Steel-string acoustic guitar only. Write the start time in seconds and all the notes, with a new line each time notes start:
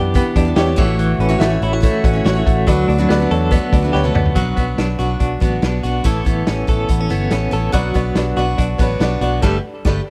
Already playing: B3 D4 G4
0.14 E3 B3 D4 G4
0.45 B3 D4 G4
0.66 B3 D4 G4
0.76 A3 E4 F#4 C#5
1.29 A3 E4 F#4 C#5
1.50 E4 F#4 C#5
1.80 A3 E4 F#4 C#5
2.13 E4 F#4 C#5
2.35 E4 F#4 C#5
2.67 A3 D4 F#4 B4
2.98 D3 F#3 A3 D4 F#4 B4
3.20 A3 D4 F#4 B4
3.51 A3 D4 F#4 B4
3.82 A3 D4 F#4 B4
4.04 A3 D4 F#4 B4
4.36 B2 F#3 B3 D4 F#4 B4
4.57 B3 D4 F#4 B4
4.99 B3 D4 F#4 B4
5.40 B3 D4 F#4 B4
5.62 B3 D4 F#4 B4
5.83 B3 D4 F#4 B4
6.04 A3 B3 E4 A4 C#5
6.25 B3 E4 A4 C#5
6.67 B3 E4 A4 C#5
7.09 B3 E4 A4 C#5
7.31 B3 E4 A4 C#5
7.51 B3 E4 A4 C#5
7.72 B2 F#3 B3 D4 F#4 B4
7.94 B3 D4 F#4 B4
8.37 B3 D4 F#4 B4
8.78 B3 D4 F#4 B4
9.00 B3 D4 F#4 B4
9.21 B3 D4 F#4 B4
9.42 G3 A3 D4 G4 B4
9.85 A3 D4 G4 B4